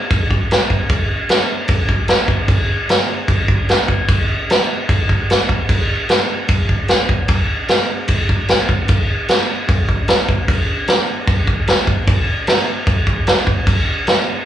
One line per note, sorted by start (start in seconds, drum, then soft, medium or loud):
0.10 kick loud
0.10 crash medium
0.31 kick medium
0.51 snare loud
0.51 crash medium
0.70 kick medium
0.89 kick loud
0.89 crash medium
1.29 snare loud
1.29 crash medium
1.68 kick loud
1.68 crash medium
1.89 kick medium
2.08 snare loud
2.08 crash medium
2.28 kick medium
2.48 kick loud
2.48 crash medium
2.89 snare loud
2.89 crash medium
3.28 kick loud
3.28 crash medium
3.48 kick medium
3.69 snare loud
3.69 crash medium
3.88 kick medium
4.09 kick loud
4.09 crash medium
4.50 snare loud
4.50 crash medium
4.89 kick loud
4.89 crash medium
5.09 kick medium
5.30 snare loud
5.30 crash medium
5.49 kick medium
5.69 kick loud
5.69 crash medium
6.09 snare loud
6.09 crash medium
6.48 kick loud
6.48 crash medium
6.69 kick medium
6.88 snare loud
6.88 crash medium
7.09 kick medium
7.28 kick loud
7.28 crash medium
7.68 snare loud
7.68 crash medium
8.08 kick loud
8.08 crash medium
8.29 kick medium
8.48 snare loud
8.48 crash medium
8.69 kick medium
8.88 kick loud
8.88 crash medium
9.28 snare loud
9.28 crash medium
9.69 kick loud
9.69 crash medium
9.89 kick medium
10.08 snare loud
10.08 crash medium
10.29 kick medium
10.48 kick loud
10.48 crash medium
10.88 snare loud
10.88 crash medium
11.27 kick loud
11.27 crash medium
11.47 kick medium
11.67 snare loud
11.67 crash medium
11.87 kick medium
12.08 kick loud
12.08 crash medium
12.47 snare loud
12.47 crash medium
12.87 kick loud
12.87 crash medium
13.07 kick medium
13.27 snare loud
13.27 crash medium
13.47 kick medium
13.67 kick loud
13.67 crash medium
14.07 snare loud
14.07 crash medium